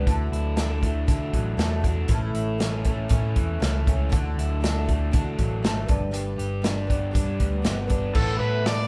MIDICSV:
0, 0, Header, 1, 6, 480
1, 0, Start_track
1, 0, Key_signature, 2, "major"
1, 0, Tempo, 505902
1, 60, Time_signature, 4, 2, 24, 8
1, 8421, End_track
2, 0, Start_track
2, 0, Title_t, "Electric slide guitar"
2, 0, Program_c, 0, 29
2, 7734, Note_on_c, 0, 69, 85
2, 7965, Note_off_c, 0, 69, 0
2, 7969, Note_on_c, 0, 71, 84
2, 8198, Note_off_c, 0, 71, 0
2, 8233, Note_on_c, 0, 74, 99
2, 8421, Note_off_c, 0, 74, 0
2, 8421, End_track
3, 0, Start_track
3, 0, Title_t, "Twelve-string acoustic guitar"
3, 0, Program_c, 1, 25
3, 66, Note_on_c, 1, 50, 77
3, 67, Note_on_c, 1, 57, 80
3, 67, Note_on_c, 1, 64, 79
3, 71, Note_on_c, 1, 66, 79
3, 75, Note_on_c, 1, 69, 80
3, 528, Note_off_c, 1, 57, 0
3, 532, Note_on_c, 1, 57, 62
3, 539, Note_off_c, 1, 64, 0
3, 543, Note_on_c, 1, 64, 62
3, 544, Note_off_c, 1, 50, 0
3, 546, Note_off_c, 1, 66, 0
3, 561, Note_on_c, 1, 66, 66
3, 563, Note_off_c, 1, 69, 0
3, 567, Note_on_c, 1, 69, 68
3, 759, Note_off_c, 1, 69, 0
3, 770, Note_on_c, 1, 69, 57
3, 772, Note_off_c, 1, 66, 0
3, 777, Note_off_c, 1, 57, 0
3, 782, Note_off_c, 1, 64, 0
3, 784, Note_on_c, 1, 66, 48
3, 799, Note_on_c, 1, 64, 45
3, 1009, Note_off_c, 1, 64, 0
3, 1014, Note_on_c, 1, 57, 62
3, 1017, Note_off_c, 1, 69, 0
3, 1021, Note_off_c, 1, 66, 0
3, 1021, Note_on_c, 1, 64, 69
3, 1032, Note_on_c, 1, 66, 66
3, 1044, Note_on_c, 1, 69, 68
3, 1486, Note_off_c, 1, 57, 0
3, 1490, Note_on_c, 1, 57, 63
3, 1493, Note_off_c, 1, 64, 0
3, 1495, Note_off_c, 1, 66, 0
3, 1497, Note_on_c, 1, 64, 67
3, 1506, Note_on_c, 1, 66, 64
3, 1521, Note_off_c, 1, 69, 0
3, 1525, Note_on_c, 1, 69, 64
3, 1709, Note_off_c, 1, 69, 0
3, 1720, Note_on_c, 1, 69, 56
3, 1729, Note_off_c, 1, 66, 0
3, 1737, Note_off_c, 1, 57, 0
3, 1740, Note_on_c, 1, 66, 51
3, 1741, Note_off_c, 1, 64, 0
3, 1754, Note_on_c, 1, 64, 42
3, 1973, Note_off_c, 1, 69, 0
3, 1977, Note_on_c, 1, 45, 75
3, 1983, Note_off_c, 1, 66, 0
3, 1986, Note_on_c, 1, 52, 75
3, 1988, Note_on_c, 1, 57, 82
3, 1989, Note_off_c, 1, 64, 0
3, 1996, Note_on_c, 1, 61, 77
3, 2000, Note_on_c, 1, 64, 85
3, 2001, Note_on_c, 1, 69, 79
3, 2446, Note_off_c, 1, 57, 0
3, 2450, Note_on_c, 1, 57, 59
3, 2456, Note_off_c, 1, 61, 0
3, 2462, Note_off_c, 1, 45, 0
3, 2467, Note_on_c, 1, 61, 56
3, 2469, Note_off_c, 1, 64, 0
3, 2472, Note_on_c, 1, 64, 61
3, 2484, Note_off_c, 1, 69, 0
3, 2487, Note_on_c, 1, 69, 64
3, 2691, Note_off_c, 1, 69, 0
3, 2695, Note_off_c, 1, 64, 0
3, 2698, Note_off_c, 1, 57, 0
3, 2702, Note_on_c, 1, 69, 55
3, 2706, Note_on_c, 1, 64, 55
3, 2707, Note_off_c, 1, 61, 0
3, 2717, Note_on_c, 1, 61, 48
3, 2729, Note_on_c, 1, 57, 47
3, 2914, Note_off_c, 1, 57, 0
3, 2926, Note_on_c, 1, 57, 65
3, 2928, Note_off_c, 1, 61, 0
3, 2937, Note_off_c, 1, 64, 0
3, 2939, Note_on_c, 1, 61, 68
3, 2944, Note_off_c, 1, 69, 0
3, 2949, Note_on_c, 1, 64, 74
3, 2961, Note_on_c, 1, 69, 66
3, 3399, Note_off_c, 1, 57, 0
3, 3406, Note_off_c, 1, 61, 0
3, 3411, Note_on_c, 1, 57, 62
3, 3417, Note_on_c, 1, 61, 70
3, 3424, Note_off_c, 1, 69, 0
3, 3428, Note_off_c, 1, 64, 0
3, 3435, Note_on_c, 1, 69, 72
3, 3438, Note_on_c, 1, 64, 66
3, 3651, Note_off_c, 1, 69, 0
3, 3659, Note_off_c, 1, 57, 0
3, 3662, Note_off_c, 1, 61, 0
3, 3663, Note_on_c, 1, 69, 55
3, 3667, Note_off_c, 1, 64, 0
3, 3678, Note_on_c, 1, 64, 56
3, 3690, Note_on_c, 1, 57, 47
3, 3690, Note_on_c, 1, 61, 49
3, 3878, Note_off_c, 1, 57, 0
3, 3879, Note_off_c, 1, 52, 0
3, 3883, Note_on_c, 1, 50, 82
3, 3885, Note_off_c, 1, 64, 0
3, 3889, Note_on_c, 1, 57, 75
3, 3893, Note_off_c, 1, 61, 0
3, 3894, Note_off_c, 1, 69, 0
3, 3897, Note_on_c, 1, 64, 85
3, 3905, Note_on_c, 1, 69, 90
3, 3906, Note_on_c, 1, 66, 86
3, 4358, Note_off_c, 1, 57, 0
3, 4370, Note_off_c, 1, 64, 0
3, 4370, Note_on_c, 1, 57, 58
3, 4375, Note_off_c, 1, 50, 0
3, 4381, Note_on_c, 1, 64, 68
3, 4382, Note_off_c, 1, 66, 0
3, 4386, Note_off_c, 1, 69, 0
3, 4394, Note_on_c, 1, 66, 66
3, 4402, Note_on_c, 1, 69, 64
3, 4595, Note_off_c, 1, 69, 0
3, 4606, Note_on_c, 1, 69, 52
3, 4609, Note_off_c, 1, 66, 0
3, 4618, Note_off_c, 1, 57, 0
3, 4620, Note_on_c, 1, 66, 55
3, 4624, Note_off_c, 1, 64, 0
3, 4637, Note_on_c, 1, 64, 42
3, 4847, Note_off_c, 1, 64, 0
3, 4853, Note_on_c, 1, 57, 61
3, 4857, Note_off_c, 1, 66, 0
3, 4857, Note_off_c, 1, 69, 0
3, 4859, Note_on_c, 1, 64, 61
3, 4869, Note_on_c, 1, 66, 67
3, 4881, Note_on_c, 1, 69, 68
3, 5324, Note_off_c, 1, 57, 0
3, 5336, Note_on_c, 1, 57, 62
3, 5337, Note_off_c, 1, 64, 0
3, 5344, Note_off_c, 1, 66, 0
3, 5346, Note_off_c, 1, 69, 0
3, 5349, Note_on_c, 1, 64, 66
3, 5355, Note_on_c, 1, 66, 70
3, 5357, Note_on_c, 1, 69, 67
3, 5563, Note_off_c, 1, 69, 0
3, 5566, Note_on_c, 1, 71, 53
3, 5578, Note_off_c, 1, 66, 0
3, 5581, Note_off_c, 1, 57, 0
3, 5581, Note_on_c, 1, 67, 53
3, 5587, Note_off_c, 1, 64, 0
3, 5591, Note_on_c, 1, 62, 50
3, 5794, Note_off_c, 1, 62, 0
3, 5797, Note_off_c, 1, 67, 0
3, 5798, Note_on_c, 1, 55, 70
3, 5804, Note_off_c, 1, 71, 0
3, 5805, Note_on_c, 1, 62, 76
3, 5808, Note_on_c, 1, 67, 75
3, 5816, Note_on_c, 1, 71, 86
3, 6267, Note_off_c, 1, 55, 0
3, 6278, Note_on_c, 1, 55, 65
3, 6282, Note_off_c, 1, 62, 0
3, 6290, Note_off_c, 1, 67, 0
3, 6293, Note_on_c, 1, 62, 59
3, 6297, Note_off_c, 1, 71, 0
3, 6301, Note_on_c, 1, 67, 63
3, 6309, Note_on_c, 1, 71, 66
3, 6506, Note_off_c, 1, 71, 0
3, 6517, Note_on_c, 1, 71, 55
3, 6523, Note_off_c, 1, 67, 0
3, 6532, Note_off_c, 1, 55, 0
3, 6533, Note_off_c, 1, 62, 0
3, 6534, Note_on_c, 1, 67, 51
3, 6544, Note_on_c, 1, 62, 42
3, 6748, Note_on_c, 1, 55, 57
3, 6754, Note_off_c, 1, 62, 0
3, 6754, Note_off_c, 1, 67, 0
3, 6761, Note_off_c, 1, 71, 0
3, 6765, Note_on_c, 1, 62, 66
3, 6766, Note_on_c, 1, 67, 65
3, 6772, Note_on_c, 1, 71, 67
3, 7220, Note_off_c, 1, 55, 0
3, 7231, Note_off_c, 1, 62, 0
3, 7231, Note_on_c, 1, 55, 60
3, 7242, Note_on_c, 1, 62, 67
3, 7243, Note_off_c, 1, 67, 0
3, 7246, Note_off_c, 1, 71, 0
3, 7255, Note_on_c, 1, 67, 71
3, 7257, Note_on_c, 1, 71, 67
3, 7455, Note_off_c, 1, 71, 0
3, 7466, Note_on_c, 1, 71, 62
3, 7469, Note_off_c, 1, 67, 0
3, 7480, Note_on_c, 1, 67, 52
3, 7487, Note_off_c, 1, 55, 0
3, 7490, Note_off_c, 1, 62, 0
3, 7501, Note_on_c, 1, 62, 44
3, 7725, Note_off_c, 1, 71, 0
3, 7726, Note_on_c, 1, 45, 64
3, 7732, Note_off_c, 1, 67, 0
3, 7733, Note_on_c, 1, 52, 63
3, 7735, Note_off_c, 1, 62, 0
3, 7738, Note_on_c, 1, 57, 73
3, 7738, Note_on_c, 1, 64, 75
3, 7741, Note_on_c, 1, 69, 72
3, 7741, Note_on_c, 1, 71, 78
3, 8187, Note_off_c, 1, 57, 0
3, 8198, Note_on_c, 1, 57, 60
3, 8202, Note_off_c, 1, 69, 0
3, 8208, Note_off_c, 1, 64, 0
3, 8212, Note_on_c, 1, 64, 62
3, 8214, Note_off_c, 1, 45, 0
3, 8214, Note_on_c, 1, 69, 61
3, 8219, Note_off_c, 1, 71, 0
3, 8231, Note_on_c, 1, 71, 63
3, 8421, Note_off_c, 1, 52, 0
3, 8421, Note_off_c, 1, 57, 0
3, 8421, Note_off_c, 1, 64, 0
3, 8421, Note_off_c, 1, 69, 0
3, 8421, Note_off_c, 1, 71, 0
3, 8421, End_track
4, 0, Start_track
4, 0, Title_t, "Overdriven electric guitar"
4, 0, Program_c, 2, 29
4, 60, Note_on_c, 2, 50, 62
4, 303, Note_on_c, 2, 64, 67
4, 542, Note_on_c, 2, 62, 63
4, 787, Note_on_c, 2, 57, 60
4, 1014, Note_off_c, 2, 62, 0
4, 1025, Note_on_c, 2, 62, 65
4, 1263, Note_off_c, 2, 50, 0
4, 1269, Note_on_c, 2, 54, 56
4, 1508, Note_off_c, 2, 57, 0
4, 1512, Note_on_c, 2, 57, 60
4, 1739, Note_off_c, 2, 62, 0
4, 1750, Note_on_c, 2, 62, 63
4, 1779, Note_off_c, 2, 64, 0
4, 1987, Note_off_c, 2, 62, 0
4, 1988, Note_off_c, 2, 54, 0
4, 1991, Note_on_c, 2, 45, 65
4, 2231, Note_on_c, 2, 64, 69
4, 2468, Note_on_c, 2, 61, 66
4, 2719, Note_off_c, 2, 57, 0
4, 2722, Note_on_c, 2, 57, 66
4, 2943, Note_off_c, 2, 61, 0
4, 2955, Note_on_c, 2, 61, 70
4, 3190, Note_off_c, 2, 45, 0
4, 3198, Note_on_c, 2, 52, 61
4, 3430, Note_off_c, 2, 64, 0
4, 3437, Note_off_c, 2, 57, 0
4, 3448, Note_on_c, 2, 57, 62
4, 3674, Note_off_c, 2, 61, 0
4, 3685, Note_on_c, 2, 61, 62
4, 3913, Note_off_c, 2, 52, 0
4, 3916, Note_off_c, 2, 61, 0
4, 3918, Note_off_c, 2, 57, 0
4, 3921, Note_on_c, 2, 50, 66
4, 4158, Note_on_c, 2, 64, 63
4, 4394, Note_on_c, 2, 62, 69
4, 4624, Note_on_c, 2, 57, 61
4, 4849, Note_off_c, 2, 62, 0
4, 4860, Note_on_c, 2, 62, 69
4, 5101, Note_on_c, 2, 54, 63
4, 5114, Note_off_c, 2, 50, 0
4, 5329, Note_off_c, 2, 57, 0
4, 5340, Note_on_c, 2, 57, 68
4, 5352, Note_off_c, 2, 64, 0
4, 5577, Note_on_c, 2, 43, 62
4, 5583, Note_off_c, 2, 57, 0
4, 5583, Note_off_c, 2, 62, 0
4, 5584, Note_off_c, 2, 54, 0
4, 5801, Note_off_c, 2, 43, 0
4, 5813, Note_on_c, 2, 43, 64
4, 6056, Note_on_c, 2, 67, 66
4, 6298, Note_on_c, 2, 62, 67
4, 6540, Note_on_c, 2, 59, 61
4, 6762, Note_off_c, 2, 62, 0
4, 6773, Note_on_c, 2, 62, 69
4, 7018, Note_off_c, 2, 43, 0
4, 7018, Note_on_c, 2, 55, 58
4, 7246, Note_off_c, 2, 59, 0
4, 7257, Note_on_c, 2, 59, 66
4, 7259, Note_off_c, 2, 67, 0
4, 7484, Note_off_c, 2, 62, 0
4, 7495, Note_on_c, 2, 62, 60
4, 7718, Note_on_c, 2, 45, 81
4, 7724, Note_off_c, 2, 55, 0
4, 7728, Note_off_c, 2, 59, 0
4, 7728, Note_on_c, 2, 52, 76
4, 7732, Note_on_c, 2, 57, 82
4, 7736, Note_off_c, 2, 62, 0
4, 7740, Note_on_c, 2, 59, 81
4, 7744, Note_on_c, 2, 64, 81
4, 8421, Note_off_c, 2, 45, 0
4, 8421, Note_off_c, 2, 52, 0
4, 8421, Note_off_c, 2, 57, 0
4, 8421, Note_off_c, 2, 59, 0
4, 8421, Note_off_c, 2, 64, 0
4, 8421, End_track
5, 0, Start_track
5, 0, Title_t, "Fingered electric bass"
5, 0, Program_c, 3, 33
5, 59, Note_on_c, 3, 38, 91
5, 280, Note_off_c, 3, 38, 0
5, 305, Note_on_c, 3, 38, 79
5, 987, Note_off_c, 3, 38, 0
5, 1029, Note_on_c, 3, 50, 83
5, 1246, Note_off_c, 3, 50, 0
5, 1265, Note_on_c, 3, 33, 82
5, 1484, Note_off_c, 3, 33, 0
5, 1496, Note_on_c, 3, 40, 86
5, 1943, Note_off_c, 3, 40, 0
5, 1980, Note_on_c, 3, 33, 88
5, 2202, Note_off_c, 3, 33, 0
5, 2223, Note_on_c, 3, 33, 75
5, 2907, Note_off_c, 3, 33, 0
5, 2950, Note_on_c, 3, 45, 83
5, 3168, Note_off_c, 3, 45, 0
5, 3184, Note_on_c, 3, 40, 83
5, 3405, Note_off_c, 3, 40, 0
5, 3432, Note_on_c, 3, 37, 84
5, 3872, Note_off_c, 3, 37, 0
5, 3918, Note_on_c, 3, 38, 89
5, 4133, Note_off_c, 3, 38, 0
5, 4155, Note_on_c, 3, 38, 78
5, 4833, Note_off_c, 3, 38, 0
5, 4871, Note_on_c, 3, 50, 83
5, 5089, Note_off_c, 3, 50, 0
5, 5111, Note_on_c, 3, 33, 82
5, 5329, Note_off_c, 3, 33, 0
5, 5351, Note_on_c, 3, 32, 91
5, 5569, Note_off_c, 3, 32, 0
5, 5587, Note_on_c, 3, 31, 93
5, 6029, Note_off_c, 3, 31, 0
5, 6065, Note_on_c, 3, 31, 74
5, 6747, Note_off_c, 3, 31, 0
5, 6784, Note_on_c, 3, 43, 79
5, 7004, Note_off_c, 3, 43, 0
5, 7018, Note_on_c, 3, 38, 78
5, 7241, Note_off_c, 3, 38, 0
5, 7261, Note_on_c, 3, 31, 88
5, 7704, Note_off_c, 3, 31, 0
5, 7733, Note_on_c, 3, 33, 89
5, 7957, Note_off_c, 3, 33, 0
5, 7963, Note_on_c, 3, 45, 90
5, 8421, Note_off_c, 3, 45, 0
5, 8421, End_track
6, 0, Start_track
6, 0, Title_t, "Drums"
6, 66, Note_on_c, 9, 36, 94
6, 70, Note_on_c, 9, 42, 67
6, 161, Note_off_c, 9, 36, 0
6, 164, Note_off_c, 9, 42, 0
6, 316, Note_on_c, 9, 42, 48
6, 411, Note_off_c, 9, 42, 0
6, 540, Note_on_c, 9, 42, 76
6, 543, Note_on_c, 9, 38, 97
6, 635, Note_off_c, 9, 42, 0
6, 638, Note_off_c, 9, 38, 0
6, 784, Note_on_c, 9, 36, 70
6, 790, Note_on_c, 9, 42, 53
6, 879, Note_off_c, 9, 36, 0
6, 885, Note_off_c, 9, 42, 0
6, 1026, Note_on_c, 9, 36, 102
6, 1027, Note_on_c, 9, 42, 78
6, 1121, Note_off_c, 9, 36, 0
6, 1121, Note_off_c, 9, 42, 0
6, 1267, Note_on_c, 9, 36, 71
6, 1269, Note_on_c, 9, 42, 58
6, 1362, Note_off_c, 9, 36, 0
6, 1363, Note_off_c, 9, 42, 0
6, 1509, Note_on_c, 9, 42, 73
6, 1512, Note_on_c, 9, 38, 95
6, 1604, Note_off_c, 9, 42, 0
6, 1606, Note_off_c, 9, 38, 0
6, 1746, Note_on_c, 9, 36, 77
6, 1749, Note_on_c, 9, 42, 60
6, 1840, Note_off_c, 9, 36, 0
6, 1844, Note_off_c, 9, 42, 0
6, 1975, Note_on_c, 9, 42, 79
6, 1985, Note_on_c, 9, 36, 95
6, 2070, Note_off_c, 9, 42, 0
6, 2079, Note_off_c, 9, 36, 0
6, 2227, Note_on_c, 9, 42, 60
6, 2322, Note_off_c, 9, 42, 0
6, 2469, Note_on_c, 9, 42, 77
6, 2472, Note_on_c, 9, 38, 94
6, 2564, Note_off_c, 9, 42, 0
6, 2567, Note_off_c, 9, 38, 0
6, 2701, Note_on_c, 9, 42, 57
6, 2707, Note_on_c, 9, 36, 76
6, 2795, Note_off_c, 9, 42, 0
6, 2802, Note_off_c, 9, 36, 0
6, 2936, Note_on_c, 9, 42, 81
6, 2948, Note_on_c, 9, 36, 104
6, 3031, Note_off_c, 9, 42, 0
6, 3042, Note_off_c, 9, 36, 0
6, 3188, Note_on_c, 9, 42, 55
6, 3191, Note_on_c, 9, 36, 76
6, 3283, Note_off_c, 9, 42, 0
6, 3286, Note_off_c, 9, 36, 0
6, 3436, Note_on_c, 9, 42, 77
6, 3439, Note_on_c, 9, 38, 95
6, 3531, Note_off_c, 9, 42, 0
6, 3534, Note_off_c, 9, 38, 0
6, 3675, Note_on_c, 9, 36, 83
6, 3678, Note_on_c, 9, 42, 61
6, 3770, Note_off_c, 9, 36, 0
6, 3773, Note_off_c, 9, 42, 0
6, 3910, Note_on_c, 9, 42, 76
6, 3915, Note_on_c, 9, 36, 103
6, 4005, Note_off_c, 9, 42, 0
6, 4010, Note_off_c, 9, 36, 0
6, 4165, Note_on_c, 9, 42, 50
6, 4260, Note_off_c, 9, 42, 0
6, 4401, Note_on_c, 9, 42, 70
6, 4403, Note_on_c, 9, 38, 95
6, 4496, Note_off_c, 9, 42, 0
6, 4498, Note_off_c, 9, 38, 0
6, 4636, Note_on_c, 9, 42, 50
6, 4638, Note_on_c, 9, 36, 75
6, 4731, Note_off_c, 9, 42, 0
6, 4733, Note_off_c, 9, 36, 0
6, 4870, Note_on_c, 9, 42, 70
6, 4875, Note_on_c, 9, 36, 99
6, 4965, Note_off_c, 9, 42, 0
6, 4970, Note_off_c, 9, 36, 0
6, 5111, Note_on_c, 9, 42, 54
6, 5114, Note_on_c, 9, 36, 74
6, 5206, Note_off_c, 9, 42, 0
6, 5209, Note_off_c, 9, 36, 0
6, 5355, Note_on_c, 9, 42, 73
6, 5358, Note_on_c, 9, 38, 100
6, 5450, Note_off_c, 9, 42, 0
6, 5453, Note_off_c, 9, 38, 0
6, 5584, Note_on_c, 9, 42, 59
6, 5591, Note_on_c, 9, 36, 98
6, 5678, Note_off_c, 9, 42, 0
6, 5686, Note_off_c, 9, 36, 0
6, 5823, Note_on_c, 9, 42, 81
6, 5918, Note_off_c, 9, 42, 0
6, 6066, Note_on_c, 9, 42, 56
6, 6161, Note_off_c, 9, 42, 0
6, 6301, Note_on_c, 9, 42, 76
6, 6304, Note_on_c, 9, 38, 102
6, 6396, Note_off_c, 9, 42, 0
6, 6399, Note_off_c, 9, 38, 0
6, 6547, Note_on_c, 9, 36, 75
6, 6551, Note_on_c, 9, 42, 58
6, 6642, Note_off_c, 9, 36, 0
6, 6646, Note_off_c, 9, 42, 0
6, 6784, Note_on_c, 9, 36, 99
6, 6786, Note_on_c, 9, 42, 81
6, 6879, Note_off_c, 9, 36, 0
6, 6881, Note_off_c, 9, 42, 0
6, 7020, Note_on_c, 9, 42, 58
6, 7023, Note_on_c, 9, 36, 72
6, 7115, Note_off_c, 9, 42, 0
6, 7118, Note_off_c, 9, 36, 0
6, 7254, Note_on_c, 9, 42, 77
6, 7257, Note_on_c, 9, 38, 102
6, 7349, Note_off_c, 9, 42, 0
6, 7352, Note_off_c, 9, 38, 0
6, 7492, Note_on_c, 9, 42, 63
6, 7499, Note_on_c, 9, 36, 77
6, 7587, Note_off_c, 9, 42, 0
6, 7594, Note_off_c, 9, 36, 0
6, 7729, Note_on_c, 9, 49, 98
6, 7736, Note_on_c, 9, 36, 101
6, 7824, Note_off_c, 9, 49, 0
6, 7831, Note_off_c, 9, 36, 0
6, 8215, Note_on_c, 9, 46, 50
6, 8218, Note_on_c, 9, 38, 102
6, 8310, Note_off_c, 9, 46, 0
6, 8312, Note_off_c, 9, 38, 0
6, 8421, End_track
0, 0, End_of_file